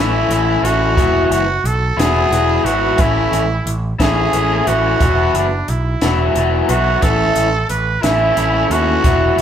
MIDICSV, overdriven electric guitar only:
0, 0, Header, 1, 2, 480
1, 0, Start_track
1, 0, Tempo, 671892
1, 693, Time_signature, 6, 3, 24, 8
1, 6728, End_track
2, 0, Start_track
2, 0, Title_t, "Overdriven electric guitar"
2, 0, Program_c, 0, 29
2, 0, Note_on_c, 0, 52, 69
2, 0, Note_on_c, 0, 57, 69
2, 0, Note_on_c, 0, 61, 81
2, 0, Note_on_c, 0, 64, 95
2, 193, Note_off_c, 0, 52, 0
2, 202, Note_on_c, 0, 52, 72
2, 203, Note_off_c, 0, 61, 0
2, 204, Note_off_c, 0, 57, 0
2, 209, Note_off_c, 0, 64, 0
2, 212, Note_on_c, 0, 57, 66
2, 212, Note_on_c, 0, 61, 70
2, 217, Note_on_c, 0, 64, 77
2, 433, Note_off_c, 0, 61, 0
2, 437, Note_off_c, 0, 64, 0
2, 440, Note_off_c, 0, 57, 0
2, 442, Note_on_c, 0, 61, 74
2, 444, Note_off_c, 0, 52, 0
2, 445, Note_on_c, 0, 64, 73
2, 449, Note_on_c, 0, 57, 60
2, 453, Note_on_c, 0, 52, 63
2, 679, Note_off_c, 0, 52, 0
2, 685, Note_off_c, 0, 57, 0
2, 686, Note_off_c, 0, 64, 0
2, 688, Note_off_c, 0, 61, 0
2, 688, Note_on_c, 0, 52, 78
2, 688, Note_on_c, 0, 54, 79
2, 692, Note_on_c, 0, 59, 72
2, 694, Note_on_c, 0, 64, 70
2, 1003, Note_off_c, 0, 52, 0
2, 1003, Note_off_c, 0, 54, 0
2, 1005, Note_off_c, 0, 59, 0
2, 1006, Note_off_c, 0, 64, 0
2, 1406, Note_on_c, 0, 64, 87
2, 1412, Note_on_c, 0, 59, 78
2, 1413, Note_on_c, 0, 54, 74
2, 1416, Note_on_c, 0, 52, 67
2, 1640, Note_off_c, 0, 52, 0
2, 1647, Note_off_c, 0, 54, 0
2, 1648, Note_on_c, 0, 52, 66
2, 1649, Note_off_c, 0, 59, 0
2, 1650, Note_off_c, 0, 64, 0
2, 1655, Note_on_c, 0, 54, 60
2, 1658, Note_on_c, 0, 59, 78
2, 1660, Note_on_c, 0, 64, 72
2, 1881, Note_off_c, 0, 64, 0
2, 1887, Note_off_c, 0, 59, 0
2, 1888, Note_off_c, 0, 54, 0
2, 1890, Note_on_c, 0, 64, 75
2, 1891, Note_off_c, 0, 52, 0
2, 1895, Note_on_c, 0, 59, 73
2, 1896, Note_on_c, 0, 54, 68
2, 1903, Note_on_c, 0, 52, 62
2, 2111, Note_off_c, 0, 52, 0
2, 2120, Note_on_c, 0, 52, 69
2, 2121, Note_off_c, 0, 54, 0
2, 2121, Note_off_c, 0, 64, 0
2, 2123, Note_off_c, 0, 59, 0
2, 2124, Note_on_c, 0, 57, 81
2, 2126, Note_on_c, 0, 61, 82
2, 2130, Note_on_c, 0, 64, 81
2, 2439, Note_off_c, 0, 52, 0
2, 2441, Note_off_c, 0, 57, 0
2, 2442, Note_off_c, 0, 61, 0
2, 2444, Note_off_c, 0, 64, 0
2, 2850, Note_on_c, 0, 64, 80
2, 2856, Note_on_c, 0, 57, 68
2, 2856, Note_on_c, 0, 61, 78
2, 2863, Note_on_c, 0, 52, 66
2, 3077, Note_off_c, 0, 52, 0
2, 3081, Note_off_c, 0, 57, 0
2, 3084, Note_off_c, 0, 61, 0
2, 3086, Note_on_c, 0, 52, 67
2, 3088, Note_off_c, 0, 64, 0
2, 3090, Note_on_c, 0, 57, 67
2, 3092, Note_on_c, 0, 61, 75
2, 3097, Note_on_c, 0, 64, 71
2, 3323, Note_off_c, 0, 64, 0
2, 3327, Note_off_c, 0, 61, 0
2, 3330, Note_off_c, 0, 52, 0
2, 3330, Note_off_c, 0, 57, 0
2, 3332, Note_on_c, 0, 64, 75
2, 3335, Note_on_c, 0, 61, 64
2, 3339, Note_on_c, 0, 57, 66
2, 3343, Note_on_c, 0, 52, 64
2, 3570, Note_off_c, 0, 52, 0
2, 3573, Note_off_c, 0, 64, 0
2, 3575, Note_off_c, 0, 61, 0
2, 3576, Note_off_c, 0, 57, 0
2, 3578, Note_on_c, 0, 52, 70
2, 3583, Note_on_c, 0, 59, 89
2, 3584, Note_on_c, 0, 54, 73
2, 3586, Note_on_c, 0, 64, 83
2, 3888, Note_off_c, 0, 52, 0
2, 3890, Note_off_c, 0, 59, 0
2, 3891, Note_off_c, 0, 54, 0
2, 3892, Note_off_c, 0, 64, 0
2, 4299, Note_on_c, 0, 64, 84
2, 4303, Note_on_c, 0, 59, 72
2, 4306, Note_on_c, 0, 52, 74
2, 4306, Note_on_c, 0, 54, 84
2, 4533, Note_off_c, 0, 54, 0
2, 4535, Note_off_c, 0, 52, 0
2, 4535, Note_off_c, 0, 59, 0
2, 4537, Note_off_c, 0, 64, 0
2, 4542, Note_on_c, 0, 54, 63
2, 4543, Note_on_c, 0, 52, 71
2, 4543, Note_on_c, 0, 59, 76
2, 4551, Note_on_c, 0, 64, 77
2, 4764, Note_off_c, 0, 64, 0
2, 4769, Note_off_c, 0, 59, 0
2, 4773, Note_on_c, 0, 64, 71
2, 4775, Note_off_c, 0, 54, 0
2, 4776, Note_off_c, 0, 52, 0
2, 4777, Note_on_c, 0, 59, 65
2, 4783, Note_on_c, 0, 54, 64
2, 4785, Note_on_c, 0, 52, 62
2, 5005, Note_off_c, 0, 52, 0
2, 5013, Note_off_c, 0, 64, 0
2, 5013, Note_on_c, 0, 52, 75
2, 5016, Note_off_c, 0, 54, 0
2, 5016, Note_off_c, 0, 59, 0
2, 5019, Note_on_c, 0, 57, 73
2, 5020, Note_on_c, 0, 61, 81
2, 5021, Note_on_c, 0, 64, 75
2, 5325, Note_off_c, 0, 52, 0
2, 5328, Note_off_c, 0, 57, 0
2, 5329, Note_off_c, 0, 61, 0
2, 5329, Note_off_c, 0, 64, 0
2, 5733, Note_on_c, 0, 64, 83
2, 5743, Note_on_c, 0, 52, 72
2, 5743, Note_on_c, 0, 57, 65
2, 5743, Note_on_c, 0, 61, 73
2, 5964, Note_off_c, 0, 52, 0
2, 5966, Note_off_c, 0, 57, 0
2, 5968, Note_off_c, 0, 61, 0
2, 5973, Note_off_c, 0, 64, 0
2, 5973, Note_on_c, 0, 52, 66
2, 5975, Note_on_c, 0, 57, 67
2, 5977, Note_on_c, 0, 61, 78
2, 5980, Note_on_c, 0, 64, 73
2, 6210, Note_off_c, 0, 64, 0
2, 6213, Note_off_c, 0, 52, 0
2, 6213, Note_off_c, 0, 61, 0
2, 6214, Note_off_c, 0, 57, 0
2, 6218, Note_on_c, 0, 64, 76
2, 6221, Note_on_c, 0, 61, 75
2, 6222, Note_on_c, 0, 57, 69
2, 6229, Note_on_c, 0, 52, 61
2, 6449, Note_off_c, 0, 52, 0
2, 6456, Note_off_c, 0, 64, 0
2, 6457, Note_off_c, 0, 57, 0
2, 6457, Note_off_c, 0, 61, 0
2, 6458, Note_on_c, 0, 52, 73
2, 6461, Note_on_c, 0, 54, 73
2, 6466, Note_on_c, 0, 59, 76
2, 6470, Note_on_c, 0, 64, 89
2, 6728, Note_off_c, 0, 52, 0
2, 6728, Note_off_c, 0, 54, 0
2, 6728, Note_off_c, 0, 59, 0
2, 6728, Note_off_c, 0, 64, 0
2, 6728, End_track
0, 0, End_of_file